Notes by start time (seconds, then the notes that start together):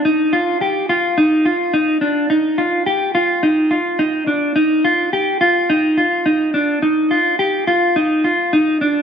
0.05 D#4
0.33 F4
0.61 G4
0.89 F4
1.18 D#4
1.45 F4
1.74 D#4
2.01 D4
2.30 D#4
2.58 F4
2.86 G4
3.15 F4
3.43 D#4
3.71 F4
3.99 D#4
4.27 D4
4.56 D#4
4.85 F4
5.13 G4
5.41 F4
5.70 D#4
5.97 F4
6.26 D#4
6.54 D4
6.82 D#4
7.11 F4
7.39 G4
7.67 F4
7.96 D#4
8.24 F4
8.53 D#4
8.81 D4